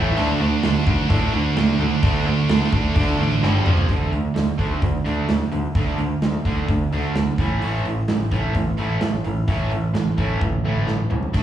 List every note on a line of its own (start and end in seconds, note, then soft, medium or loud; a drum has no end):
0.00 0.15 A2 medium
0.00 0.15 E3 medium
0.00 0.15 A3 loud
0.16 0.33 D2 loud
0.16 0.39 D3 medium
0.16 0.39 A3 medium
0.16 0.39 D4 loud
0.16 open hi-hat medium
0.40 0.55 D2 medium
0.40 0.61 D3 medium
0.40 0.61 A3 medium
0.40 0.63 D4 medium
0.63 0.79 D2 medium
0.63 0.84 D3 medium
0.63 0.84 A3 medium
0.63 0.86 D4 loud
0.63 snare loud
0.63 open hi-hat medium
0.86 1.03 D2 medium
0.86 1.07 D3 medium
0.86 1.07 A3 medium
0.86 1.09 D4 loud
0.86 kick medium
1.09 1.25 A2 medium
1.09 1.31 D3 medium
1.09 1.31 A3 medium
1.09 1.31 D4 medium
1.09 kick loud
1.09 open hi-hat medium
1.32 1.49 D2 medium
1.32 1.53 D3 medium
1.32 1.54 A3 medium
1.32 1.57 D4 loud
1.56 1.72 D2 medium
1.56 1.77 D3 medium
1.56 1.77 A3 medium
1.56 1.80 D4 medium
1.56 snare loud
1.56 open hi-hat medium
1.79 1.94 D2 medium
1.79 2.00 D3 medium
1.79 2.01 A3 medium
1.79 2.03 D4 loud
2.03 2.33 D2 loud
2.03 2.24 D3 medium
2.03 2.25 A3 medium
2.03 2.25 D4 loud
2.03 kick loud
2.03 open hi-hat medium
2.26 2.47 D3 medium
2.26 2.47 A3 medium
2.26 2.50 D4 medium
2.49 2.65 D2 medium
2.49 2.70 D3 medium
2.49 2.70 A3 medium
2.49 2.73 D4 medium
2.49 snare loud
2.49 open hi-hat medium
2.71 2.88 D2 medium
2.71 2.93 D3 medium
2.71 2.93 A3 medium
2.71 2.96 D4 medium
2.71 kick medium
2.94 3.11 D2 medium
2.94 3.17 D3 medium
2.94 3.17 A3 loud
2.94 3.17 D4 loud
2.94 kick loud
2.94 open hi-hat medium
3.18 3.35 A1 medium
3.18 3.39 D3 medium
3.18 3.40 A3 medium
3.18 3.41 D4 loud
3.41 3.58 G1 loud
3.41 3.63 G2 medium
3.41 3.64 D3 loud
3.41 3.64 G3 loud
3.41 snare medium
3.64 3.82 F1 medium
3.64 3.87 F2 medium
3.64 3.87 C3 loud
3.64 3.87 F3 loud
3.64 mid tom medium
3.77 floor tom medium
3.89 4.03 D2 medium
3.89 4.11 D3 medium
3.89 4.11 A3 medium
3.89 4.11 D4 medium
3.89 kick medium
3.89 open hi-hat medium
4.12 4.27 D2 medium
4.12 4.33 D3 medium
4.12 4.33 A3 medium
4.12 open hi-hat soft
4.35 4.50 D2 medium
4.35 4.56 D3 medium
4.35 4.56 A3 medium
4.35 snare medium
4.35 open hi-hat medium
4.58 4.73 D2 medium
4.58 4.80 D3 medium
4.58 4.80 A3 medium
4.58 4.81 D4 medium
4.58 kick medium
4.58 open hi-hat soft
4.82 4.97 D2 medium
4.82 5.03 D3 medium
4.82 5.03 A3 medium
4.82 kick loud
4.82 open hi-hat medium
5.04 5.20 D2 medium
5.04 5.27 D3 medium
5.04 5.27 A3 medium
5.04 5.27 D4 medium
5.04 open hi-hat soft
5.28 5.43 D2 medium
5.28 5.49 D3 medium
5.28 5.50 A3 medium
5.28 snare medium
5.28 open hi-hat medium
5.52 5.66 D2 medium
5.52 5.73 D3 medium
5.52 5.73 A3 medium
5.52 open hi-hat soft
5.75 5.89 D2 medium
5.75 5.97 D3 medium
5.75 5.98 A3 medium
5.75 5.98 D4 medium
5.75 kick loud
5.75 open hi-hat medium
5.98 6.13 D2 medium
5.98 6.20 D3 medium
5.98 6.20 A3 medium
5.98 open hi-hat soft
6.22 6.37 D2 medium
6.22 6.43 D3 medium
6.22 6.43 A3 medium
6.22 snare medium
6.22 open hi-hat medium
6.45 6.60 D2 medium
6.45 6.67 D3 medium
6.45 6.67 A3 medium
6.45 6.67 D4 medium
6.45 kick medium
6.45 open hi-hat soft
6.68 6.83 D2 medium
6.68 6.89 D3 medium
6.68 6.90 A3 medium
6.68 kick medium
6.68 open hi-hat medium
6.92 7.06 D2 medium
6.92 7.14 D3 medium
6.92 7.14 A3 medium
6.92 7.15 D4 medium
6.92 open hi-hat soft
7.15 7.30 D2 medium
7.15 7.36 D3 medium
7.15 7.37 A3 medium
7.15 snare medium
7.15 open hi-hat medium
7.38 7.53 A1 medium
7.38 7.61 A2 medium
7.38 7.61 E3 medium
7.38 7.61 A3 medium
7.38 kick medium
7.38 snare soft
7.38 open hi-hat soft
7.62 7.77 A1 medium
7.62 7.84 A2 medium
7.62 7.85 E3 medium
7.62 7.85 A3 medium
7.62 open hi-hat medium
7.84 7.99 A1 medium
7.84 8.06 A2 medium
7.84 8.07 E3 medium
7.84 open hi-hat soft
8.08 8.23 A1 medium
8.08 8.30 A2 medium
8.08 8.29 E3 medium
8.08 snare medium
8.08 open hi-hat medium
8.31 8.47 A1 medium
8.31 8.53 A2 medium
8.31 8.53 E3 medium
8.31 8.54 A3 loud
8.31 kick medium
8.31 open hi-hat soft
8.55 8.70 A1 medium
8.55 8.76 A2 medium
8.55 8.76 E3 medium
8.55 kick medium
8.55 open hi-hat medium
8.78 8.93 A1 medium
8.78 9.00 A2 medium
8.78 9.00 E3 medium
8.78 9.01 A3 medium
8.78 open hi-hat soft
9.01 9.16 A1 medium
9.01 9.23 A2 medium
9.01 9.23 E3 medium
9.01 snare medium
9.01 open hi-hat medium
9.24 9.40 A1 medium
9.24 9.46 A2 medium
9.24 9.46 E3 medium
9.24 open hi-hat soft
9.48 9.63 A1 medium
9.48 9.70 A2 medium
9.48 9.70 E3 medium
9.48 9.70 A3 medium
9.48 kick medium
9.48 open hi-hat medium
9.71 9.86 A1 medium
9.71 9.92 A2 medium
9.71 9.92 E3 medium
9.71 open hi-hat soft
9.94 10.08 A1 medium
9.94 10.15 A2 medium
9.94 10.16 E3 medium
9.94 snare medium
9.94 open hi-hat medium
10.17 10.33 A1 medium
10.17 10.40 A2 medium
10.17 10.40 E3 medium
10.17 10.40 A3 medium
10.17 kick medium
10.17 open hi-hat soft
10.41 10.56 A1 medium
10.41 10.62 A2 medium
10.41 10.63 E3 medium
10.41 kick loud
10.41 high tom soft
10.53 high tom soft
10.64 10.78 A1 medium
10.64 10.85 A2 medium
10.64 10.86 E3 medium
10.64 10.87 A3 medium
10.76 mid tom medium
10.87 11.01 A1 medium
10.87 11.08 A2 medium
10.87 11.08 E3 medium
10.87 snare medium
11.10 11.25 C2 medium
11.10 11.31 A2 medium
11.10 11.32 E3 medium
11.10 floor tom medium
11.23 floor tom medium
11.33 11.43 D2 medium
11.33 11.43 D3 medium
11.33 11.43 A3 medium
11.33 11.43 D4 medium
11.33 kick medium
11.33 open hi-hat medium
11.33 crash medium